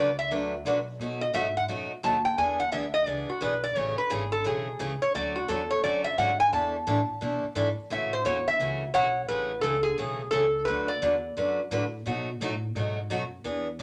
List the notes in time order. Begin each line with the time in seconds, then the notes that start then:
Already playing: C#2 D5
0.19 E5
0.30 D2 D3 F#3 A3 D4 F#4 B4
0.65 B1 D3 F#3 A3 D4 F#4 B4
0.99 B2 F#3 A3 D#4 F#4
1.21 D#5
1.33 G#2 B2 F#3 A3 D#4 F#4 E5
1.57 F#5
1.68 F#2 B2 F#3 A3 D#4 F#4
2.03 D#2 B2 F#3 A3 D#4 F#4 A5
2.25 G5
2.38 E2 E3 B3 D4 G#4 G#5
2.60 F#5
2.72 D2 E3 B3 D4 G#4 E5
2.94 D#5
3.06 C#2 E3 B3 D4 G#4 D5
3.30 F#4
3.41 B1 E3 B3 D4 G#4 B4
3.64 D5
3.75 A1 C#3 E3 A3 C#4 G#4 C#5
3.98 B4, muted upright bass stroke
4.10 G#1 C#3 E3 A3 C#4 G#4
4.32 A4
4.44 B1 C#3 E3 A3 C#4 G#4
4.79 C#2 C#3 E3 A3 C#4 G#4
5.02 C#5, muted upright bass stroke
5.14 D2 D3 F#3 A3 C#4 F#4 D5
5.36 F#4
5.48 E2 D3 F#3 A3 C#4 F#4 A4
5.71 C#5
5.83 F#2 D3 F#3 A3 C#4 F#4 D5
6.04 E5
6.18 G#2 D3 F#3 A3 C#4 F#4 F#5
6.40 G#5
6.52 E2 E3 A3 D4 E4 A4 A5
6.87 A2 E3 A3 D4 E4 A4
7.09 muted upright bass stroke
7.21 B2 E3 A3 D4 E4 A4
7.44 muted upright bass stroke
7.55 G#2 E3 A3 D4 E4 A4
7.78 muted upright bass stroke
7.90 A2 C#3 E3 A3 C#4 F#4 E5
8.13 C5
8.25 E2 C#3 E3 A3 C#4 F#4 C#5
8.48 E5
8.59 C#2 C#3 E3 A3 C#4 F#4
8.94 B1 C#3 E3 A3 C#4 F#4 C#5 F#5
9.28 A1 C#3 E3 A3 C#4 G#4 B4
9.61 C#2 C#3 E3 A3 C#4 G#4 A4
9.83 G#4
9.98 B1 C#3 E3 A3 C#4 G#4
10.31 C#2 C#3 E3 A3 C#4 G#4 A4
10.65 D2 D3 F#3 A3 D4 F#4 B4
10.88 D5
11.02 E2 D3 F#3 A3 D4 F#4 B4
11.37 F#2 D3 F#3 A3 D4 F#4 B4
11.71 A2 D3 F#3 A3 D4 F#4 B4
12.06 B2 F#3 A3 D#4 F#4
12.40 A2 B2 F#3 A3 D#4 F#4
12.75 G#2 B2 F#3 A3 D#4 F#4
13.10 F#2 B2 F#3 A3 D#4 F#4
13.44 E2 E3 B3 D4 G#4
13.79 B1 E3